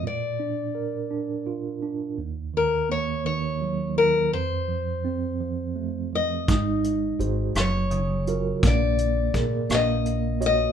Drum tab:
HH |------|------|------|xxxxxx|
SD |------|------|------|---r--|
BD |------|------|------|o-----|

HH |xxxxxx|
SD |---r--|
BD |o-o---|